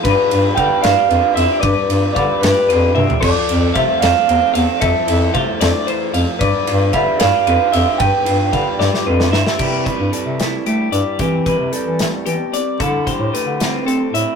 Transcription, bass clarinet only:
\new Staff \with { instrumentName = "Bass clarinet" } { \clef bass \time 6/8 \key c \major \tempo 4. = 75 g,16 r16 g,8 d16 r16 g,16 r16 f,16 r16 f,16 r16 | g,16 r16 g,8 d16 r16 g,16 r16 f,8 g,16 r16 | f,16 r16 f,8 c16 r16 f,16 r16 e,16 r16 e,16 r16 | f,16 r16 f,8 c16 r16 f,16 r8. f,16 r16 |
g,16 r16 g,8 d16 r16 g,16 r16 f,16 r16 f,16 r16 | g,16 r16 g,8 d16 r16 g,16 r16 f,8 g,16 r16 | c8. g,16 r16 c8. a8 g,16 r16 | e8. c16 r16 e8 r16 e16 r8. |
d8. a,16 r16 d8. c'8 a,16 r16 | }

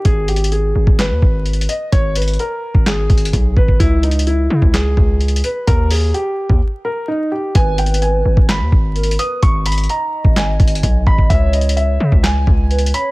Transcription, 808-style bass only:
\new Staff \with { instrumentName = "808-style bass" } { \clef bass \time 4/4 \key gis \minor \tempo 4 = 128 gis,,4. gis,,16 gis,,8 dis,16 gis,,4 r8 | gis,,4 r8. gis,,8. gis,,8 b,,8 gis,,8 | cis,4. cis16 cis,8. cis,4 r8 | dis,4 r8. dis,16 r2 |
gis,,4. gis,,16 gis,,8 dis,16 gis,,4 r8 | gis,,4 r8. gis,,8. gis,,8 b,,8 gis,,8 | cis,4. cis16 cis,8. cis,4 r8 | }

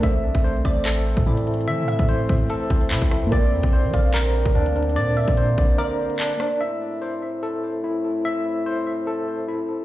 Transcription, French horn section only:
\new Staff \with { instrumentName = "French horn section" } { \time 4/4 \key a \phrygian \tempo 4 = 146 << { c'1~ | c'1~ | c'1~ | c'1 |
<a, e'>1~ | <a, e'>1 | } \\ { <e a>1~ | <e a>1 | <d bes>1~ | <d bes>1 |
<a c'>1~ | <a c'>1 | } >> }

